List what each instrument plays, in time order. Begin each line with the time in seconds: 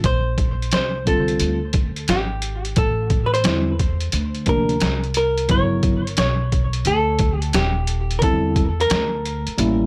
0.04 upright bass A#1, hollow-body jazz guitar C5, kick, closed hi-hat
0.38 kick, closed hi-hat
0.62 closed hi-hat
0.71 upright bass C2, hollow-body jazz guitar C5, snare, closed hi-hat
1.05 tine electric piano C#3 G3 C4 F4, hollow-body jazz guitar A4, kick, closed hi-hat
1.12 tine electric piano D3
1.28 closed hi-hat
1.40 upright bass D2, closed hi-hat
1.73 kick, closed hi-hat
1.96 closed hi-hat
2.08 upright bass G#1, hollow-body jazz guitar G4, snare, closed hi-hat
2.42 closed hi-hat
2.65 closed hi-hat
2.76 upright bass A1, hollow-body jazz guitar A4, kick, closed hi-hat
3.10 kick, closed hi-hat
3.26 hollow-body jazz guitar B4
3.34 hollow-body jazz guitar C5, closed hi-hat
3.44 upright bass E2, tine electric piano D3 G3 C4 E4, snare, closed hi-hat
3.79 kick, closed hi-hat
4.00 closed hi-hat
4.12 upright bass D2, closed hi-hat
4.35 closed hi-hat
4.46 tine electric piano C3 F3 A#3 D4, hollow-body jazz guitar A#4, kick, closed hi-hat
4.69 closed hi-hat
4.80 upright bass C2, snare, closed hi-hat
5.04 closed hi-hat
5.14 hollow-body jazz guitar A#4, closed hi-hat
5.38 closed hi-hat
5.48 upright bass G1, tine electric piano C#3 F#3 B3 E4, hollow-body jazz guitar C#5, kick, closed hi-hat
5.83 kick, closed hi-hat
6.07 closed hi-hat
6.17 upright bass B1, hollow-body jazz guitar C#5, snare, closed hi-hat
6.52 kick, closed hi-hat
6.73 closed hi-hat
6.85 upright bass D2, hollow-body jazz guitar A4, closed hi-hat
7.19 kick, closed hi-hat
7.39 hollow-body jazz guitar G4, closed hi-hat
7.53 upright bass D#1, hollow-body jazz guitar G4, snare, closed hi-hat
7.87 closed hi-hat
8.11 closed hi-hat
8.19 upright bass E2, tine electric piano D3 G3 C4, hollow-body jazz guitar A#4, kick, closed hi-hat
8.23 tine electric piano E4, hollow-body jazz guitar A4
8.56 kick, closed hi-hat
8.80 hollow-body jazz guitar A#4, closed hi-hat
8.90 upright bass D2, snare, closed hi-hat
9.25 closed hi-hat
9.47 muted upright bass stroke, closed hi-hat
9.57 upright bass A1, tine electric piano G3 A#3 C#4 E4, closed hi-hat